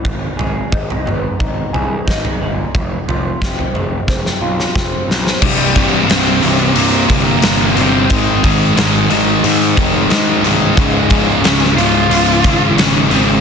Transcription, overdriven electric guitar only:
\new Staff \with { instrumentName = "Overdriven electric guitar" } { \clef bass \time 4/4 \key f \dorian \tempo 4 = 90 r1 | r1 | \key c \minor <c, g, c>8 <c, g, c>8 <c, g, c>8 <c, g, c>8 <c, g, c>8 <c, g, c>8 <c, g, c>8 <c, g, c>8 | <aes, ees aes>8 <aes, ees aes>8 <aes, ees aes>8 <aes, ees aes>8 <aes, ees aes>8 <aes, ees aes>8 <aes, ees aes>8 <aes, ees aes>8 |
<des, aes, des>8 <des, aes, des>8 <des, aes, des>8 <des, aes, des>8 <des, aes, des>8 <des, aes, des>8 <des, aes, des>8 <des, aes, des>8 | }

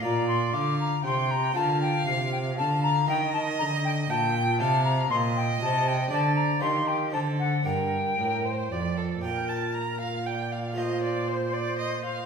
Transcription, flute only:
\new Staff \with { instrumentName = "Flute" } { \time 3/4 \key bes \major \tempo 4 = 118 bes''8 c'''8 d'''8 bes''8 c'''8 bes''8 | a''8 g''8 f''8 g''8 a''8 bes''8 | \key g \minor g''8 a''8 bes''8 g''8 a''8 g''8 | a''8 bes''8 c'''8 g''8 a''8 g''8 |
a''8 bes''8 c'''8 g''8 a''8 fis''8 | g''2~ g''8 r8 | \key bes \major bes'2 d''4 | c''2. | }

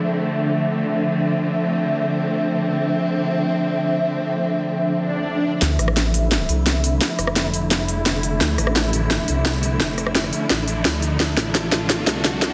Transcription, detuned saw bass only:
\new Staff \with { instrumentName = "Detuned saw bass" } { \clef bass \time 4/4 \key d \minor \tempo 4 = 172 r1 | r1 | r1 | r1 |
d,8 a,,4 a,,4 c,4. | r8 f,,2~ f,,8 f,,4 | d,8 a,,4 a,,4 c,4. | f,,4. r8 a,,4 d,4 |
d,8 a,,4 a,,4 c,4. | }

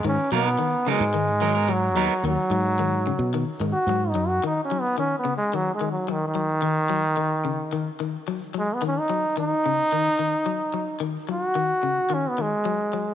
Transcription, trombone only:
\new Staff \with { instrumentName = "Trombone" } { \time 4/4 \key gis \minor \tempo 4 = 109 cis'8 b4 gis4. fis4 | fis2 \tuplet 3/2 { r4 fis'8~ fis'8 dis'8 fis'8 } | \tuplet 3/2 { dis'8 cis'8 b8 cis'8 b8 gis8 fis8 gis8 fis8 dis8 dis4~ } | dis2~ dis16 r4 r16 gis16 b16 |
cis'16 dis'8. dis'2. | r8 fis'4. cis'16 b16 gis4. | }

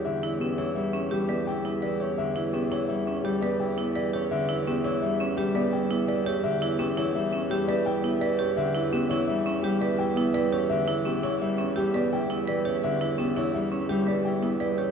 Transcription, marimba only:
\new Staff \with { instrumentName = "Marimba" } { \time 6/4 \key e \dorian \tempo 4 = 169 r8 e'8 cis'8 e'8 r8 cis'8 g'8 b'8 r8 e'8 b'8 g'8 | r8 e'8 cis'8 e'8 r8 cis'8 g'8 b'8 r8 e'8 b'8 g'8 | r8 e'8 cis'8 e'8 r8 cis'8 g'8 b'8 r8 e'8 b'8 g'8 | r8 e'8 cis'8 e'8 r8 cis'8 g'8 b'8 r8 e'8 b'8 g'8 |
r8 e'8 cis'8 e'8 r8 cis'8 g'8 b'8 r8 e'8 b'8 g'8 | r8 e'8 cis'8 e'8 r8 cis'8 g'8 b'8 r8 e'8 b'8 g'8 | r8 e'8 cis'8 e'8 r8 cis'8 g'8 b'8 r8 e'8 b'8 g'8 | }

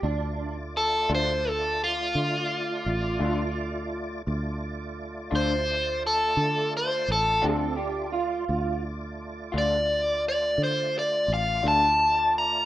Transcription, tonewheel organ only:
\new Staff \with { instrumentName = "Tonewheel organ" } { \time 12/8 \key d \minor \tempo 4. = 57 <a f' d''>1. | <a f' d''>1. | <a f' d''>1. | }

